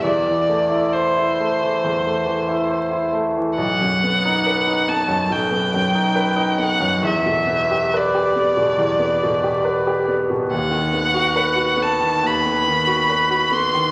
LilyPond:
<<
  \new Staff \with { instrumentName = "Violin" } { \time 4/4 \key b \phrygian \tempo 4 = 69 d''4 c''2~ c''8 r8 | fis''4. a''8 g''4. fis''8 | e''4 d''2~ d''8 r8 | fis''4. a''8 b''4. c'''8 | }
  \new Staff \with { instrumentName = "Grand piano" } { \time 4/4 \key b \phrygian e,16 e16 a16 e'16 c''16 e'16 a16 e16 e,16 a16 e16 e'16 c''16 e'16 a16 e16 | b,,16 fis,16 b16 dis'16 b'16 dis'16 b16 fis,16 b,,16 b16 fis,16 dis'16 b'16 dis'16 b16 fis,16 | e,16 b,16 b16 g'16 b'16 g'16 b16 b,16 e,16 b16 b,16 g'16 b'16 g'16 b16 b,16 | dis,16 dis16 b16 fis'16 b'16 fis'16 b16 dis16 dis,16 b16 dis16 fis'16 b'16 fis'16 b16 dis16 | }
>>